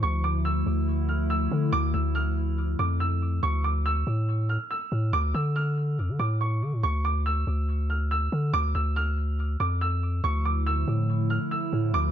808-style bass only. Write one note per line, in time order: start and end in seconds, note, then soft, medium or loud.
0.03 0.64 D2 loud
0.66 1.48 D2 loud
1.52 1.72 D3 loud
1.73 1.93 D2 loud
1.94 2.76 D2 loud
2.79 3.40 F2 loud
3.43 4.04 D2 loud
4.07 4.58 A2 loud
4.92 5.12 A2 loud
5.13 5.34 D2 loud
5.34 6.00 D3 loud
5.98 6.10 F2 loud
6.09 6.19 D3 loud
6.20 6.64 A2 loud
6.62 6.74 D3 loud
6.73 6.83 A2 loud
6.83 7.45 D2 loud
7.47 8.29 D2 loud
8.32 8.53 D3 loud
8.54 8.74 D2 loud
8.75 9.57 D2 loud
9.60 10.21 F2 loud
10.24 10.85 D2 loud
10.88 11.39 A2 loud
11.73 11.93 A2 loud
11.94 12.12 D2 loud